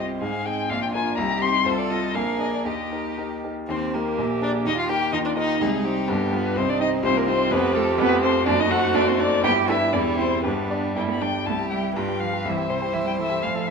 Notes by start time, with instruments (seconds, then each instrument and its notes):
Already playing: grand piano C2 C4 G4 D#5, viola C4, cello F4, violin G4
0.21 grand piano G#2, cello D#4, violin G#4 F5
0.45 grand piano C4 G#4 D#5, violin G5
0.69 grand piano A#1, viola D4, cello D4, violin F4 F5
0.82 violin G5
0.94 grand piano D4 F4 A#4, violin G#5
1.17 grand piano C2, viola D#4, cello G4, violin G4 A#5
1.41 grand piano C4 D#4 G4, violin C6
1.65 grand piano C2, viola F4, violin A4 C5, cello A4
1.78 violin D5
1.90 grand piano C4 F4 A4, violin D#5
2.14 grand piano A#1, viola D4, violin G#4 F5, cello A#4
2.39 grand piano D4 G#4 A#4, violin D#5
2.53 violin D5
2.65 grand piano D#2, viola D#4, cello G4, violin G4 D#5
2.92 grand piano D#4 G4 A#4
3.18 grand piano D#4 G4 A#4
3.44 grand piano D#4 G4 A#4
3.68 grand piano D#2 D#3, violin C4 C5, cello C4, viola G4
3.94 violin A#3 A#4, cello A#3, grand piano D#4 G4 A#4
4.18 grand piano A#1 A#2
4.42 grand piano D4 G#4 A#4, cello D4, violin D4 D5
4.65 grand piano D#2 D#3, violin D#4 D#5, cello D#4
4.77 violin F4 F5, cello F4
4.89 grand piano D#4 G4 A#4, violin G4 G5, cello G4
5.12 grand piano D#2 D#3, violin D#4 D#5, cello D#4, viola F4
5.25 violin D4 D5, cello D4
5.36 cello D#4, grand piano D#4 G4 A#4, violin D#4 D#5
5.60 grand piano C2 C3, cello G#3, viola D#4, violin D#4 G#4
5.84 cello G3, grand piano D#4 G4 C5, violin G4
6.08 grand piano G1 G2, violin B3, viola D4
6.32 cello B3, grand piano F4 G4 B4, violin B4
6.56 grand piano C2 C3, violin C4 C5, cello C4, viola D#4
6.69 cello D4, violin D5
6.79 grand piano D#4 G4 C5, cello D#4, violin D#5
7.03 grand piano C2 C3, cello C4, viola F4, violin C5
7.16 cello A#3, violin A#4
7.27 cello C4, grand piano D#4 G4 C5, violin C5
7.50 grand piano F1 F2, cello B3, viola G4, violin B4
7.74 cello A3, grand piano F4 A4 C5, violin A4
7.98 grand piano F1 F2, cello B3, violin B4
8.22 cello C4, grand piano F4 A4 C5, violin C5
8.46 grand piano F#1 F#2, violin A3 D5, cello D4, viola F#4
8.59 cello D#4, violin D#5
8.71 grand piano D#4 A4 C5, cello F#4, violin F#5
8.94 grand piano F#1 F#2, cello D4, violin D5
9.07 cello C4, violin C5
9.19 cello D4, grand piano D#4 A4 C5, violin D5
9.43 grand piano G1 G2, violin B3 G5, viola E4, cello G4
9.68 violin A3 E5, grand piano D4 G4 B4, cello E4
9.93 grand piano E1 E2, violin G3 D5, cello D4
10.18 cello C4, grand piano E4 G4 C5, violin C5
10.44 grand piano G1 G2, violin G3 B4, cello B3, viola D4
10.70 grand piano D4 G4 D5
10.96 grand piano G1 G2, cello G3, viola E4, violin G5
11.09 cello B3, violin B5
11.21 cello G3, viola D4, grand piano D4 G4 D5, violin G5
11.46 grand piano C2, cello A3, viola E4, violin G4 A5
11.59 grand piano G4
11.70 cello G3, grand piano E5, violin G5
11.84 grand piano G4
11.95 grand piano G2, cello G3, viola F4, violin B4 G5
12.09 grand piano G4
12.20 cello F3, violin F5, grand piano F5
12.33 grand piano G4
12.45 grand piano C2, cello E3, viola E4, violin C5 E5
12.58 grand piano G4
12.69 cello C3, violin C5, grand piano E5
12.82 grand piano G4
12.93 cello E3, violin E5, grand piano E5
13.05 cello G3, grand piano G4, violin G5
13.18 cello E3, grand piano A4, violin E5
13.30 grand piano G4
13.42 grand piano A1, cello F3, violin F5
13.54 grand piano A4
13.67 cello E3, grand piano E5, violin E5